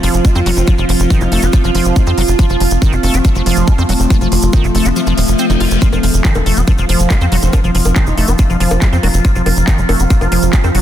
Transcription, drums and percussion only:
0.03 open hi-hat loud
0.14 closed hi-hat soft
0.14 shaker medium
0.25 kick loud
0.25 closed hi-hat medium
0.25 shaker medium
0.35 closed hi-hat soft
0.35 shaker soft
0.46 open hi-hat medium
0.57 closed hi-hat soft
0.57 shaker medium
0.67 kick loud
0.67 closed hi-hat medium
0.67 shaker medium
0.78 closed hi-hat soft
0.78 shaker soft
0.89 open hi-hat loud
1.00 closed hi-hat medium
1.00 shaker medium
1.10 kick loud
1.10 closed hi-hat soft
1.10 shaker medium
1.21 closed hi-hat soft
1.21 shaker soft
1.32 open hi-hat medium
1.42 closed hi-hat medium
1.42 shaker medium
1.53 kick loud
1.53 closed hi-hat medium
1.53 shaker medium
1.64 closed hi-hat soft
1.64 shaker soft
1.75 open hi-hat loud
1.85 closed hi-hat medium
1.85 shaker medium
1.96 kick loud
1.96 closed hi-hat medium
1.96 shaker medium
2.06 closed hi-hat soft
2.06 shaker soft
2.18 open hi-hat medium
2.28 closed hi-hat soft
2.28 shaker medium
2.39 kick loud
2.39 closed hi-hat medium
2.39 shaker medium
2.49 closed hi-hat soft
2.49 shaker soft
2.60 open hi-hat loud
2.71 closed hi-hat medium
2.71 shaker medium
2.82 kick loud
2.82 closed hi-hat medium
2.82 shaker medium
2.93 closed hi-hat soft
2.93 shaker soft
3.03 open hi-hat medium
3.14 closed hi-hat medium
3.14 shaker medium
3.25 kick loud
3.25 closed hi-hat medium
3.25 shaker medium
3.35 closed hi-hat soft
3.35 shaker soft
3.46 open hi-hat loud
3.57 closed hi-hat medium
3.57 shaker medium
3.67 kick loud
3.67 closed hi-hat medium
3.67 shaker medium
3.78 closed hi-hat soft
3.78 shaker soft
3.89 open hi-hat medium
4.00 closed hi-hat medium
4.00 shaker medium
4.10 kick loud
4.10 closed hi-hat medium
4.10 shaker medium
4.21 closed hi-hat soft
4.21 shaker soft
4.32 open hi-hat loud
4.42 closed hi-hat medium
4.42 shaker medium
4.53 kick loud
4.53 closed hi-hat medium
4.53 shaker medium
4.64 closed hi-hat soft
4.64 shaker soft
4.75 open hi-hat medium
4.85 closed hi-hat medium
4.85 shaker medium
4.96 closed hi-hat medium
4.96 shaker medium
5.07 closed hi-hat soft
5.07 shaker soft
5.18 open hi-hat loud
5.28 closed hi-hat medium
5.28 shaker medium
5.38 closed hi-hat medium
5.38 shaker medium
5.50 closed hi-hat soft
5.50 shaker soft
5.60 open hi-hat medium
5.71 closed hi-hat medium
5.71 shaker medium
5.82 kick loud
5.82 closed hi-hat medium
5.82 shaker medium
5.93 closed hi-hat soft
5.93 high bongo soft
5.93 shaker soft
6.03 open hi-hat loud
6.14 closed hi-hat medium
6.14 shaker medium
6.25 kick loud
6.25 clap loud
6.25 closed hi-hat medium
6.25 shaker medium
6.35 closed hi-hat soft
6.35 high bongo medium
6.35 shaker soft
6.46 open hi-hat medium
6.57 closed hi-hat medium
6.57 shaker medium
6.67 kick loud
6.67 closed hi-hat medium
6.67 high bongo soft
6.67 shaker medium
6.78 closed hi-hat soft
6.78 shaker soft
6.89 open hi-hat loud
7.00 closed hi-hat medium
7.00 shaker medium
7.10 kick loud
7.10 clap loud
7.10 closed hi-hat medium
7.10 high bongo soft
7.10 shaker medium
7.21 closed hi-hat soft
7.21 shaker soft
7.32 open hi-hat medium
7.42 closed hi-hat medium
7.42 shaker medium
7.53 kick loud
7.53 closed hi-hat medium
7.53 high bongo medium
7.53 shaker medium
7.64 closed hi-hat soft
7.64 shaker soft
7.75 open hi-hat loud
7.85 closed hi-hat medium
7.85 high bongo soft
7.85 shaker medium
7.96 kick loud
7.96 clap loud
7.96 closed hi-hat medium
7.96 shaker medium
8.07 closed hi-hat soft
8.07 shaker soft
8.18 open hi-hat medium
8.28 closed hi-hat medium
8.28 high bongo soft
8.28 shaker medium
8.38 kick loud
8.38 closed hi-hat medium
8.38 shaker medium
8.50 closed hi-hat soft
8.50 shaker soft
8.60 open hi-hat loud
8.71 closed hi-hat medium
8.71 high bongo medium
8.71 shaker medium
8.82 kick loud
8.82 clap loud
8.82 closed hi-hat medium
8.82 shaker medium
8.93 closed hi-hat soft
8.93 shaker soft
9.03 open hi-hat medium
9.03 high bongo soft
9.14 closed hi-hat medium
9.14 shaker medium
9.25 kick loud
9.25 closed hi-hat medium
9.25 shaker medium
9.35 closed hi-hat soft
9.35 shaker soft
9.46 open hi-hat loud
9.46 high bongo soft
9.57 closed hi-hat medium
9.57 shaker medium
9.68 kick loud
9.68 clap loud
9.68 closed hi-hat medium
9.68 shaker medium
9.78 closed hi-hat soft
9.78 shaker soft
9.89 open hi-hat medium
9.89 high bongo medium
10.00 closed hi-hat medium
10.00 shaker medium
10.10 kick loud
10.10 closed hi-hat medium
10.10 shaker medium
10.21 closed hi-hat soft
10.21 high bongo soft
10.21 shaker soft
10.32 open hi-hat loud
10.43 closed hi-hat medium
10.43 shaker medium
10.53 kick loud
10.53 clap loud
10.53 closed hi-hat medium
10.53 shaker medium
10.64 closed hi-hat soft
10.64 high bongo soft
10.64 shaker soft
10.75 open hi-hat loud

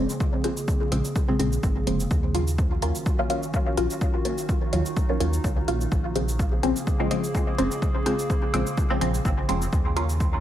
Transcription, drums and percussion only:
0.10 cabasa soft
0.20 kick loud
0.20 cabasa soft
0.44 closed hi-hat medium
0.57 cabasa soft
0.68 kick loud
0.68 cabasa soft
0.92 closed hi-hat medium
1.05 cabasa medium
1.16 kick loud
1.16 cabasa soft
1.40 closed hi-hat medium
1.52 cabasa soft
1.63 kick loud
1.63 cabasa soft
1.87 closed hi-hat medium
2.00 cabasa soft
2.11 kick loud
2.11 cabasa soft
2.35 closed hi-hat medium
2.48 cabasa soft
2.58 kick loud
2.58 cabasa soft
2.82 closed hi-hat medium
2.95 cabasa soft
3.06 kick loud
3.06 cabasa soft
3.30 closed hi-hat medium
3.43 cabasa soft
3.54 kick loud
3.54 cabasa soft
3.77 closed hi-hat medium
3.90 cabasa soft
4.01 kick loud
4.01 cabasa soft
4.25 closed hi-hat medium
4.38 cabasa soft
4.49 kick loud
4.49 cabasa soft
4.73 closed hi-hat medium
4.86 cabasa soft
4.97 kick loud
4.97 cabasa soft
5.20 closed hi-hat medium
5.33 cabasa soft
5.44 kick loud
5.44 cabasa soft
5.68 closed hi-hat medium
5.81 cabasa soft
5.92 kick loud
5.92 cabasa soft
6.16 closed hi-hat medium
6.29 cabasa soft
6.39 kick loud
6.39 cabasa soft
6.63 closed hi-hat medium
6.76 cabasa soft
6.87 kick loud
6.87 cabasa soft
7.11 closed hi-hat medium
7.24 cabasa soft
7.35 kick loud
7.35 cabasa soft
7.59 closed hi-hat medium
7.71 cabasa soft
7.82 kick loud
7.82 cabasa soft
8.06 closed hi-hat medium
8.19 cabasa soft
8.30 kick loud
8.30 cabasa soft
8.54 closed hi-hat medium
8.67 cabasa soft
8.77 kick loud
8.77 cabasa soft
9.01 closed hi-hat medium
9.14 cabasa soft
9.25 kick loud
9.25 cabasa soft
9.49 closed hi-hat medium
9.62 cabasa soft
9.73 kick loud
9.73 cabasa soft
9.97 closed hi-hat medium
10.09 cabasa soft
10.20 kick loud
10.20 cabasa soft

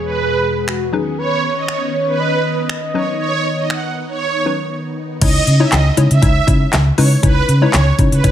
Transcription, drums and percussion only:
0.68 finger snap loud
1.68 finger snap loud
2.69 finger snap loud
3.70 finger snap loud
5.21 kick loud
5.21 closed hi-hat loud
5.21 crash loud
5.47 closed hi-hat medium
5.72 snare loud
5.72 clap loud
5.72 closed hi-hat loud
5.97 closed hi-hat medium
6.11 closed hi-hat medium
6.22 kick loud
6.22 closed hi-hat medium
6.48 kick loud
6.48 closed hi-hat medium
6.73 snare loud
6.73 clap loud
6.73 closed hi-hat loud
6.98 open hi-hat medium
7.23 kick loud
7.23 closed hi-hat loud
7.49 closed hi-hat medium
7.73 snare loud
7.73 clap loud
7.73 closed hi-hat loud
7.99 kick loud
7.99 closed hi-hat medium
8.12 closed hi-hat medium
8.24 kick loud
8.24 closed hi-hat medium

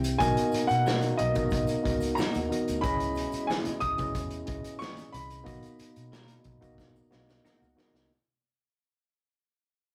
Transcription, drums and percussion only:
0.04 closed hi-hat medium
0.04 shaker medium
0.20 kick loud
0.20 closed hi-hat medium
0.20 shaker medium
0.37 closed hi-hat medium
0.37 shaker soft
0.52 closed hi-hat medium
0.52 muted conga soft
0.52 shaker soft
0.69 closed hi-hat medium
0.69 shaker soft
0.86 snare loud
0.86 high conga medium
0.86 shaker medium
1.01 closed hi-hat medium
1.01 shaker soft
1.19 closed hi-hat medium
1.19 muted conga medium
1.35 kick medium
1.35 closed hi-hat medium
1.35 low conga medium
1.35 shaker medium
1.50 kick loud
1.50 closed hi-hat loud
1.50 shaker medium
1.67 closed hi-hat medium
1.67 shaker medium
1.85 kick loud
1.85 closed hi-hat medium
1.85 muted conga soft
1.85 low conga medium
2.00 closed hi-hat medium
2.00 shaker medium
2.17 snare loud
2.17 high conga medium
2.17 shaker medium
2.34 closed hi-hat medium
2.34 shaker soft
2.51 closed hi-hat medium
2.51 high conga medium
2.68 closed hi-hat soft
2.68 shaker medium
2.84 kick loud
2.84 closed hi-hat medium
2.84 muted conga soft
2.84 shaker medium
3.00 closed hi-hat medium
3.00 shaker soft
3.15 closed hi-hat medium
3.15 muted conga soft
3.15 shaker soft
3.32 closed hi-hat soft
3.32 shaker medium
3.50 snare loud
3.50 high conga medium
3.50 shaker medium
3.65 closed hi-hat medium
3.65 shaker soft
3.81 kick medium
3.81 closed hi-hat medium
3.81 muted conga medium
3.98 kick loud
3.98 closed hi-hat medium
3.98 low conga medium
3.98 shaker medium
4.15 kick loud
4.15 closed hi-hat loud
4.15 shaker medium
4.31 closed hi-hat medium
4.31 shaker medium
4.47 kick loud
4.47 closed hi-hat medium
4.47 muted conga soft
4.64 closed hi-hat medium
4.64 shaker medium
4.82 snare loud
4.82 high conga medium
4.82 shaker medium
4.97 closed hi-hat soft
4.97 shaker soft
5.14 closed hi-hat medium
5.14 high conga medium
5.30 closed hi-hat soft
5.30 shaker medium
5.46 kick loud
5.46 closed hi-hat medium
5.46 muted conga soft
5.46 shaker medium
5.63 closed hi-hat medium
5.63 shaker soft
5.79 closed hi-hat medium
5.79 muted conga soft
5.79 shaker soft
5.96 closed hi-hat soft
5.96 shaker soft
6.13 snare loud
6.13 high conga medium
6.13 shaker medium
6.28 closed hi-hat medium
6.28 shaker soft
6.44 kick medium
6.44 closed hi-hat medium
6.44 muted conga soft
6.61 kick medium
6.61 closed hi-hat medium
6.61 low conga medium
6.61 shaker soft
6.78 kick medium
6.78 snare medium
6.78 shaker medium
6.96 shaker soft
7.11 snare medium
7.11 muted conga soft
7.11 low conga medium
7.11 shaker soft
7.29 snare medium
7.29 shaker medium
7.44 snare medium
7.44 high conga medium
7.44 shaker medium
7.63 shaker soft
7.77 snare medium
7.77 high conga medium
7.77 shaker soft
7.95 snare medium
7.95 shaker soft

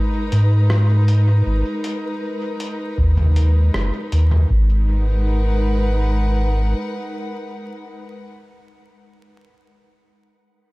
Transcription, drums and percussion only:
0.32 closed hi-hat medium
0.70 cross-stick medium
1.08 closed hi-hat medium
1.84 closed hi-hat medium
2.60 closed hi-hat medium
2.98 kick loud
3.17 mid tom medium
3.36 closed hi-hat medium
3.74 cross-stick medium
4.12 closed hi-hat medium
4.31 mid tom medium
4.50 kick loud

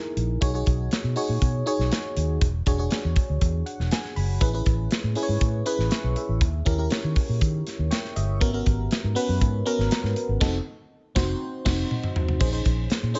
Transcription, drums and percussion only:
0.17 closed hi-hat medium
0.42 kick loud
0.42 closed hi-hat loud
0.66 kick medium
0.66 closed hi-hat medium
0.91 snare loud
0.91 closed hi-hat medium
1.16 open hi-hat medium
1.42 kick loud
1.42 closed hi-hat medium
1.67 closed hi-hat medium
1.80 snare soft
1.92 snare loud
1.92 closed hi-hat loud
2.17 closed hi-hat medium
2.41 kick loud
2.41 closed hi-hat medium
2.66 kick medium
2.66 closed hi-hat medium
2.91 snare loud
2.91 closed hi-hat medium
3.16 kick loud
3.16 closed hi-hat medium
3.41 kick medium
3.41 closed hi-hat medium
3.67 closed hi-hat medium
3.80 snare soft
3.91 snare loud
3.91 closed hi-hat loud
4.05 snare soft
4.16 open hi-hat medium
4.41 kick loud
4.41 closed hi-hat medium
4.66 kick medium
4.66 closed hi-hat medium
4.91 snare loud
4.91 closed hi-hat medium
5.15 open hi-hat medium
5.41 kick medium
5.41 closed hi-hat medium
5.66 closed hi-hat medium
5.80 snare soft
5.91 snare loud
5.91 closed hi-hat loud
6.16 closed hi-hat medium
6.41 kick loud
6.41 closed hi-hat loud
6.66 kick loud
6.66 closed hi-hat medium
6.91 snare loud
6.91 closed hi-hat medium
7.16 kick medium
7.16 open hi-hat medium
7.41 kick medium
7.41 closed hi-hat medium
7.67 snare soft
7.67 closed hi-hat medium
7.91 snare loud
7.91 closed hi-hat loud
8.05 snare soft
8.16 closed hi-hat medium
8.41 kick loud
8.41 closed hi-hat medium
8.66 kick medium
8.66 closed hi-hat medium
8.91 snare loud
8.91 closed hi-hat medium
9.16 open hi-hat medium
9.41 kick medium
9.41 closed hi-hat medium
9.66 closed hi-hat medium
9.80 snare soft
9.91 snare loud
9.91 closed hi-hat loud
10.05 snare soft
10.16 closed hi-hat medium
10.41 kick loud
10.41 snare loud
10.41 crash medium
11.16 kick loud
11.16 snare loud
11.66 kick loud
11.66 snare loud
11.66 crash medium
11.91 mid tom medium
12.04 mid tom medium
12.16 floor tom loud
12.29 floor tom medium
12.41 kick loud
12.41 crash loud
12.65 kick medium
12.65 closed hi-hat medium
12.90 snare loud
12.90 closed hi-hat medium
13.15 open hi-hat medium

